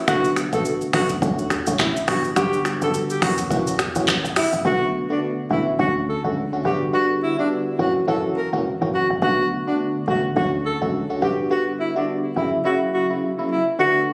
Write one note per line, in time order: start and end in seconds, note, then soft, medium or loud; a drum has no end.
0.08 0.44 B1 loud
0.08 0.49 D3 loud
0.08 0.49 A3 medium
0.08 0.49 B3 medium
0.08 0.49 F#4 loud
0.08 0.33 F#4 loud
0.08 finger snap medium
0.08 kick loud
0.08 cross-stick medium
0.08 shaker medium
0.24 shaker medium
0.36 finger snap medium
0.36 cross-stick medium
0.36 shaker medium
0.53 0.63 A1 medium
0.53 0.91 D3 medium
0.53 0.91 A3 medium
0.53 0.91 B3 medium
0.53 0.91 F#4 medium
0.53 0.64 A4 medium
0.53 kick medium
0.53 shaker soft
0.65 shaker medium
0.81 shaker soft
0.93 1.17 B1 medium
0.93 1.20 D3 medium
0.93 1.20 A3 medium
0.93 1.20 B3 medium
0.93 1.21 F#4 medium
0.93 1.08 F#4 medium
0.93 finger snap medium
0.93 kick medium
0.93 cross-stick medium
0.93 open hi-hat medium
1.09 mid tom loud
1.09 shaker medium
1.22 1.58 D2 loud
1.22 1.40 D3 loud
1.22 1.40 A3 medium
1.22 1.41 C#4 medium
1.22 1.41 F#4 loud
1.22 kick medium
1.22 shaker medium
1.39 shaker soft
1.50 finger snap medium
1.50 cross-stick medium
1.50 mid tom loud
1.50 shaker medium
1.67 1.77 A1 medium
1.67 1.81 D3 medium
1.67 1.82 A3 medium
1.67 1.82 C#4 medium
1.67 1.82 F#4 medium
1.67 shaker medium
1.79 2.02 A1 loud
1.79 1.94 E4 medium
1.79 finger snap medium
1.79 kick medium
1.79 cross-stick medium
1.79 clap medium
1.79 shaker medium
1.96 shaker medium
2.08 2.31 G1 loud
2.08 2.26 D3 medium
2.08 2.26 G3 medium
2.08 2.26 B3 medium
2.08 2.26 F#4 medium
2.08 2.23 F#4 medium
2.08 finger snap medium
2.08 cross-stick loud
2.08 open hi-hat medium
2.24 shaker soft
2.36 2.73 G1 loud
2.36 2.77 D3 loud
2.36 2.77 G3 medium
2.36 2.77 B3 medium
2.36 2.78 F#4 loud
2.36 2.61 G4 medium
2.36 finger snap medium
2.36 kick loud
2.36 cross-stick medium
2.36 shaker medium
2.53 shaker medium
2.65 finger snap medium
2.65 cross-stick medium
2.65 shaker medium
2.81 2.91 F#1 loud
2.81 3.19 D3 medium
2.81 3.19 G3 medium
2.81 3.19 B3 medium
2.81 3.19 F#4 medium
2.81 2.93 A4 medium
2.81 shaker soft
2.94 shaker medium
3.10 3.21 G4 medium
3.10 shaker soft
3.21 3.45 F#1 loud
3.21 3.48 E3 medium
3.21 3.49 A#3 medium
3.21 3.49 C#4 medium
3.21 3.49 F#4 medium
3.21 3.37 F#4 medium
3.21 finger snap medium
3.21 kick medium
3.21 cross-stick medium
3.21 open hi-hat medium
3.38 mid tom loud
3.38 shaker medium
3.50 3.74 A#1 loud
3.50 3.69 E3 medium
3.50 3.69 A#3 medium
3.50 3.69 C#4 medium
3.50 3.69 F#4 loud
3.50 kick medium
3.50 shaker medium
3.67 shaker soft
3.79 finger snap medium
3.79 cross-stick medium
3.79 mid tom medium
3.79 shaker medium
3.95 4.06 F#1 loud
3.95 4.10 E3 medium
3.95 4.10 A#3 medium
3.95 4.10 C#4 medium
3.95 4.10 F#4 medium
3.95 shaker medium
4.08 finger snap medium
4.08 kick medium
4.08 cross-stick medium
4.08 clap medium
4.08 shaker medium
4.24 4.34 F#1 medium
4.24 shaker medium
4.36 4.51 E4 medium
4.36 finger snap medium
4.36 cross-stick loud
4.36 open hi-hat medium
4.36 shaker medium
4.53 4.63 F#1 medium
4.53 shaker soft
4.65 5.01 B1 loud
4.65 5.06 D3 medium
4.65 5.06 A3 medium
4.65 5.06 B3 medium
4.65 5.06 F#4 loud
4.65 4.90 F#4 loud
5.10 5.48 D3 medium
5.10 5.48 A3 medium
5.10 5.48 B3 medium
5.10 5.21 D4 medium
5.10 5.48 F#4 medium
5.50 5.74 A1 loud
5.50 5.77 D3 medium
5.50 5.77 A3 medium
5.50 5.77 B3 medium
5.50 5.65 E4 medium
5.50 5.77 F#4 medium
5.79 6.16 D2 loud
5.79 6.20 D3 medium
5.79 6.20 A3 medium
5.79 6.20 C#4 medium
5.79 6.20 F#4 loud
5.79 5.94 F#4 medium
6.09 6.23 A4 medium
6.24 6.47 C#2 medium
6.24 6.39 D3 medium
6.24 6.39 A3 medium
6.24 6.39 C#4 medium
6.24 6.39 F#4 medium
6.52 6.63 D3 medium
6.52 6.67 A3 medium
6.52 6.67 C#4 medium
6.52 6.64 F#4 medium
6.65 7.11 G1 medium
6.65 6.91 D3 medium
6.65 6.92 G3 medium
6.65 6.92 B3 medium
6.65 6.92 F#4 loud
6.65 6.79 G4 medium
6.93 7.34 D3 medium
6.93 7.34 G3 medium
6.93 7.35 B3 medium
6.93 7.35 F#4 loud
6.93 7.08 F#4 medium
7.23 7.37 E4 medium
7.38 7.76 D3 medium
7.38 7.76 G3 medium
7.38 7.76 B3 medium
7.38 7.49 D4 medium
7.38 7.77 F#4 medium
7.79 8.02 F#1 medium
7.79 8.06 E3 medium
7.79 8.06 A#3 medium
7.79 8.06 C#4 medium
7.79 8.06 F#4 medium
7.79 7.94 F#4 medium
8.07 8.44 F#1 medium
8.07 8.49 E3 medium
8.07 8.49 A#3 medium
8.07 8.49 C#4 medium
8.07 8.49 F#4 loud
8.07 8.22 A4 medium
8.37 8.51 A#4 medium
8.53 8.76 E1 medium
8.53 8.67 E3 medium
8.53 8.67 A#3 medium
8.53 8.67 C#4 medium
8.53 8.68 F#4 medium
8.81 9.05 F#1 medium
8.81 8.96 E3 medium
8.81 8.96 A#3 medium
8.81 8.96 C#4 medium
8.81 8.96 F#4 medium
8.94 9.08 F#4 medium
9.10 9.20 F#1 medium
9.22 9.58 B1 loud
9.22 9.63 D3 medium
9.22 9.63 A3 medium
9.22 9.63 B3 medium
9.22 9.63 F#4 loud
9.22 9.47 F#4 loud
9.67 10.05 D3 medium
9.67 10.05 A3 medium
9.67 10.05 B3 medium
9.67 9.78 D4 medium
9.67 10.05 F#4 medium
10.07 10.31 A1 medium
10.07 10.34 D3 medium
10.07 10.34 A3 medium
10.07 10.34 B3 medium
10.07 10.35 F#4 medium
10.07 10.22 F#4 medium
10.36 10.73 D2 loud
10.36 10.77 D3 medium
10.36 10.77 A3 medium
10.36 10.78 C#4 medium
10.36 10.78 F#4 medium
10.36 10.51 F#4 medium
10.65 10.79 A4 medium
10.81 11.05 C#2 medium
10.81 10.96 D3 medium
10.81 10.96 A3 medium
10.81 10.96 C#4 medium
10.81 10.96 F#4 medium
11.10 11.20 D3 medium
11.10 11.24 A3 medium
11.10 11.25 C#4 medium
11.10 11.21 F#4 medium
11.22 11.68 G1 medium
11.22 11.49 D3 medium
11.22 11.49 G3 medium
11.22 11.49 B3 medium
11.22 11.49 F#4 loud
11.22 11.37 G4 medium
11.50 11.92 D3 medium
11.50 11.92 G3 medium
11.50 11.92 B3 medium
11.50 11.92 F#4 loud
11.50 11.65 F#4 medium
11.80 11.94 E4 medium
11.95 12.33 D3 medium
11.95 12.33 G3 medium
11.95 12.34 B3 medium
11.95 12.06 D4 medium
11.95 12.34 F#4 medium
12.36 12.59 F#1 medium
12.36 12.63 C#3 medium
12.36 12.63 F#3 medium
12.36 12.63 A#3 medium
12.36 12.63 E4 medium
12.36 12.51 E4 medium
12.64 13.06 C#3 medium
12.64 13.06 F#3 medium
12.64 13.06 A#3 medium
12.64 13.06 E4 loud
12.64 12.79 F#4 medium
12.94 13.08 F#4 medium
13.10 13.24 C#3 medium
13.10 13.24 F#3 medium
13.10 13.24 A#3 medium
13.10 13.25 E4 medium
13.38 13.53 C#3 medium
13.38 13.53 F#3 medium
13.38 13.53 A#3 medium
13.38 13.53 E4 medium
13.51 13.65 E4 medium
13.79 14.13 D3 loud
13.79 14.13 A3 medium
13.79 14.13 B3 medium
13.79 14.13 F#4 loud
13.79 14.04 F#4 loud